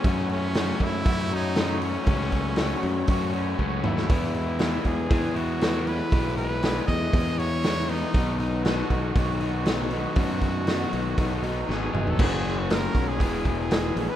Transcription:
<<
  \new Staff \with { instrumentName = "Trumpet" } { \time 4/4 \key e \major \tempo 4 = 118 cis'8 cis'4 e'4 dis'4 cis'8~ | cis'2~ cis'8 r4 e'8~ | e'8 e'4 gis'4 fis'4 b'8~ | b'8 b'4 dis''4 cis''4 dis'8~ |
dis'8 dis'8 fis'4 fis'2~ | fis'2. gis'8. a'16 | gis'8. fis'16 ais'8. gis'4 gis'4 b'16 | }
  \new Staff \with { instrumentName = "Overdriven electric guitar" } { \time 4/4 \key e \major <fis a cis' fis'>4 <fis a cis' fis'>4 <fis a cis' fis'>8 <a cis' fis'>8 <fis a cis' fis'>8 <a cis' fis'>8 | <fis a cis' fis'>4 <fis a cis' fis'>4 <fis a cis' fis'>8 <a cis' fis'>8 <fis a cis' fis'>8 <a cis' fis'>8 | <e gis b e'>4 <e gis b e'>4 <e gis b e'>8 <gis b e'>8 <e gis b e'>8 <gis b e'>8 | <e gis b e'>4 <e gis b e'>4 <e gis b e'>8 <gis b e'>8 <e gis b e'>8 <gis b e'>8 |
<b, dis fis b dis'>4 <dis fis b dis'>4 <b, dis fis b dis'>8 <fis b dis'>8 <dis fis b dis'>8 <fis b dis'>8 | <b, dis fis b dis'>4 <dis fis b dis'>4 <b, dis fis b dis'>8 <fis b dis'>8 <dis fis b dis'>8 <fis b dis'>8 | <fis ais cis' fis'>2 <e gis b e'>2 | }
  \new Staff \with { instrumentName = "Overdriven electric guitar" } { \time 4/4 \key e \major fis,8 a8 fis'8 cis'8 fis'8 cis'8 fis8 a8 | fis,8 a8 fis'8 cis'8 fis'8 cis'8 fis8 a8 | e,8 gis8 gis'8 b8 gis'8 b8 e8 gis8 | e,8 gis8 gis'8 b8 gis'8 b8 e8 gis8 |
b,8 b8 fis'8 dis'8 fis'8 dis'8 fis8 b8 | b,8 b8 fis'8 dis'8 fis'8 dis'8 fis8 b8 | <fis, cis fis ais cis' fis'>4. <fis, cis fis ais cis' fis'>8 <e, b, e gis b gis'>4. <e, b, e gis b gis'>8 | }
  \new Staff \with { instrumentName = "Fingered electric bass" } { \clef bass \time 4/4 \key e \major fis,4. fis,8 fis,2 | cis,4. fis,8 fis,4 cis,8 dis,8 | e,4. e,8 e,2 | b,,4. e,8 e,2 |
b,,4. b,,8 b,,2 | fis,4. b,,8 b,,4 gis,,8 fis,,8 | fis,,4. b,,8 e,,8 e,,4 ais,,16 r16 | }
  \new DrumStaff \with { instrumentName = "Drums" } \drummode { \time 4/4 <hho bd>16 sn16 hho8 <hho sn>8 <hho bd sn>8 <hho bd>8 hho8 <hho sn>8 hho8 | <hho bd>16 sn16 <hho bd>8 <hho sn>8 hho8 <hho bd>8 hho8 bd8 toml16 sn16 | <hho bd>16 sn16 hho8 <hho sn>8 <hho bd>8 <hho bd>8 hho8 <hho sn>8 hho8 | <hho bd>8 hho8 <hho sn>8 <hho bd>8 <hho bd>8 hho8 <hho sn>8 hho8 |
<hho bd>8 hho8 <hho sn>8 <hho bd>8 <hho bd>8 hho8 <hho sn>8 hho8 | <hho bd>8 <hho bd>8 <hho sn>8 hho8 <hho bd>8 hho8 sn8 toml16 tomfh16 | <cymc bd>8 hho8 <hho sn>8 <hho bd>8 <hho bd>8 <hho bd>8 <hho sn>8 hho8 | }
>>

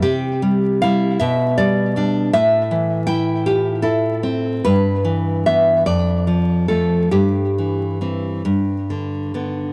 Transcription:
\new Staff \with { instrumentName = "Nylon-string guitar" } { \time 6/8 \key c \major \tempo 4. = 50 << { g'4 f''8 e''8 d''4 | e''4 g''8 g'8 a'4 | b'4 e''8 d''4 a'8 | g'4. r4. | } \\ { c8 g8 <g e'>8 b,8 g8 <g d'>8 | a,8 e8 e'8 f'8 e'8 c'8 | g,8 e8 <e b>8 f,8 f8 <f a>8 | g,8 e8 <e c'>8 g,8 d8 <d b>8 | } >> }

